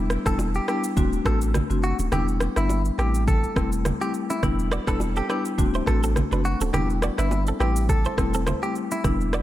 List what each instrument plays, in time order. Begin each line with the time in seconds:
Already playing: sub bass E1, marimba G3 B3 D4 E4
0.10 cross-stick, shaker
0.26 sub bass E1, marimba G3 B3 D4 E4, clean electric guitar A4, kick, cross-stick, shaker
0.39 high bongo, shaker
0.54 clean electric guitar G4, shaker
0.68 marimba G3 B3 D4 E4, clean electric guitar G4, cross-stick, shaker
0.84 shaker
0.96 sub bass D1, marimba A3 C4 D4 F#4, kick, low conga, shaker
1.13 shaker
1.25 sub bass A1, marimba A3 C4 D4 F#4, clean electric guitar A4, kick, cross-stick, low bongo, shaker
1.41 shaker
1.54 cross-stick, high bongo, low conga, shaker
1.70 sub bass F#1, marimba A3 C4 D4 F#4, shaker
1.83 clean electric guitar F#4, shaker
1.99 sub bass D1, low bongo, shaker
2.12 sub bass E1, marimba G3 B3 D4 E4, clean electric guitar G4, cross-stick, low conga, shaker
2.28 shaker
2.40 cross-stick, low bongo, shaker
2.56 sub bass G1, marimba G3 B3 D4 E4, clean electric guitar E4, cross-stick, shaker
2.69 high bongo, shaker
2.85 shaker
2.98 sub bass A1, marimba G3 A3 C4 E4, clean electric guitar G4, cross-stick, shaker
3.14 shaker
3.28 clean electric guitar A4, kick, low conga, shaker
3.44 shaker
3.56 sub bass E1, marimba G3 A3 C4 E4, kick, cross-stick, low bongo, shaker
3.72 shaker
3.85 cross-stick, high bongo, low conga, shaker
4.01 marimba G3 A3 C4 E4, clean electric guitar G4, shaker
4.14 shaker
4.30 clean electric guitar E4, low bongo, shaker
4.43 sub bass E1, marimba G3 B3 D4 E4, kick, cross-stick, low conga, shaker
4.59 shaker
4.72 clean electric guitar F#4 D5, cross-stick, shaker
4.87 sub bass E1, marimba G3 B3 D4 E4, clean electric guitar D4 A4 B4, kick, cross-stick, shaker
5.00 high bongo, shaker
5.16 clean electric guitar C4 G4 A4, shaker
5.29 marimba G3 B3 D4 E4, clean electric guitar D4 G4 B4, cross-stick, shaker
5.45 shaker
5.58 sub bass D1, marimba A3 C4 D4 F#4, kick, low conga, shaker
5.74 clean electric guitar E4 C5, shaker
5.87 sub bass A1, marimba A3 C4 D4 F#4, clean electric guitar A4, kick, cross-stick, low bongo, shaker
6.03 clean electric guitar C4 A4, shaker
6.16 cross-stick, high bongo, low conga, shaker
6.31 sub bass F#1, marimba A3 C4 D4 F#4, clean electric guitar D4 B4, shaker
6.45 clean electric guitar F#4, shaker
6.61 sub bass D1, clean electric guitar C4 A4, low bongo, shaker
6.73 sub bass E1, marimba G3 B3 D4 E4, clean electric guitar G4, cross-stick, low conga, shaker
6.90 shaker
7.02 clean electric guitar F#4 D5, cross-stick, shaker
7.18 sub bass G1, marimba G3 B3 D4 E4, clean electric guitar D4 E4 B4, cross-stick, shaker
7.31 high bongo, shaker
7.47 clean electric guitar C4 A4, shaker
7.60 sub bass A1, marimba G3 A3 C4 E4, clean electric guitar E4 G4 B4, cross-stick, shaker
7.76 shaker
7.89 clean electric guitar A4, kick, low conga, shaker
8.05 clean electric guitar E4 C5, shaker
8.17 sub bass E1, marimba G3 A3 C4 E4, kick, cross-stick, low bongo, shaker
8.34 clean electric guitar C4 A4, shaker
8.47 clean electric guitar E4 C5, cross-stick, high bongo, low conga, shaker
8.62 marimba G3 A3 C4 E4, clean electric guitar G4, shaker
8.75 shaker
8.91 clean electric guitar E4, low bongo, shaker
9.04 sub bass E1, marimba G3 B3 D4 E4, kick, cross-stick, low conga, shaker
9.21 shaker
9.33 clean electric guitar F#4 D5, cross-stick, shaker